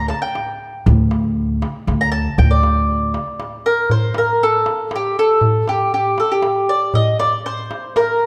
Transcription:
Already playing: upright bass D2
0.08 mandolin A5, darbuka tek
0.22 mandolin G5
0.35 darbuka tek
0.86 upright bass D2, darbuka dum
1.11 darbuka tek
1.24 darbuka ka
1.62 darbuka tek
1.87 upright bass D2, darbuka tek
2.01 mandolin A#5
2.12 mandolin A5
2.38 upright bass D2, mandolin G5, darbuka dum
2.51 mandolin D5
2.63 darbuka tek
2.90 darbuka ka
3.14 darbuka tek
3.40 darbuka tek
3.65 mandolin A#4, darbuka ka
3.90 mandolin C5, darbuka dum
4.14 mandolin A#4, darbuka tek
4.28 darbuka ka
4.43 mandolin A4
4.66 darbuka tek
4.91 darbuka tek
4.96 mandolin G4
5.17 mandolin A4, darbuka ka
5.41 darbuka dum
5.68 mandolin G4, darbuka tek
5.81 darbuka ka
5.94 mandolin G4
6.18 mandolin A4, darbuka tek
6.32 mandolin G4
6.42 darbuka tek
6.69 mandolin D5, darbuka ka
6.94 mandolin D#5, darbuka dum
7.19 mandolin D5, darbuka tek
7.33 darbuka ka
7.46 mandolin C5
7.71 darbuka tek
7.96 mandolin A#4, darbuka tek
8.22 darbuka ka

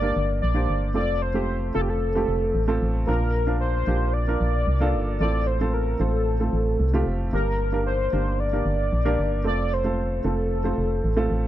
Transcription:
Already playing: fm bass G1, upright piano G2 A#3 D4 G4 A4 A#4, soft synth lead D5
0.02 upright piano A#3 D4 G4 A#4
0.17 fm bass G1
0.42 fm bass A#1, soft synth lead D5
0.54 upright piano A#3 D4 G4 C5
0.69 fm bass G1
0.94 fm bass F1, upright piano A3 C4 F4 A4, soft synth lead D5
1.22 soft synth lead C5
1.34 upright piano A3 C4 F4 G4
1.74 fm bass F1, upright piano A3 C4 F4 A4, soft synth lead A4
1.81 soft synth lead G4
1.89 soft synth lead A4
2.15 upright piano A3 C4 F4 G4
2.28 fm bass F1
2.55 fm bass A1
2.68 upright piano A3 C4 F4 A4
2.82 fm bass A1
3.07 fm bass A#1, upright piano A#2 A#3 D4 F4 A#4, soft synth lead A#4
3.47 upright piano A#3 D4 F4 A#4
3.60 soft synth lead C5
3.87 fm bass A#1, upright piano A#3 D4 F4 G4
4.13 soft synth lead D5
4.27 upright piano A#3 D4 F4 A#4
4.41 fm bass A#1
4.67 fm bass C2
4.80 upright piano A#3 D4 F4 A4
4.94 fm bass G1
5.20 fm bass A1, upright piano A2 A3 C4 F4 A4, soft synth lead D5
5.47 soft synth lead C5
5.61 upright piano A3 C4 F4 A4
5.73 soft synth lead A#4
6.00 fm bass A1, upright piano A3 C4 F4 C5, soft synth lead A4
6.40 upright piano A3 C4 F4 A4
6.53 fm bass A1
6.80 fm bass C2
6.93 upright piano A3 C4 F4 G4
7.06 fm bass F1
7.33 fm bass G1, upright piano G2 A#3 D4 G4 A#4, soft synth lead A#4
7.72 upright piano A#3 D4 G4 A#4
7.86 soft synth lead C5
8.12 fm bass G1, upright piano A#3 D4 G4 A#4
8.40 soft synth lead D5
8.53 upright piano A#3 D4 G4 A#4
8.66 fm bass G1
8.92 fm bass A#1
9.05 upright piano A#3 D4 G4 A#4
9.19 fm bass G1
9.44 fm bass F1, upright piano A3 C4 F4 A4, soft synth lead D5
9.73 soft synth lead C5
9.84 upright piano A3 C4 F4 A4
10.24 fm bass F1, upright piano A3 C4 F4 A4, soft synth lead A4
10.64 upright piano A3 C4 F4 C5
10.78 fm bass F1
11.04 fm bass A1
11.16 upright piano A3 C4 F4 A4
11.30 fm bass A1

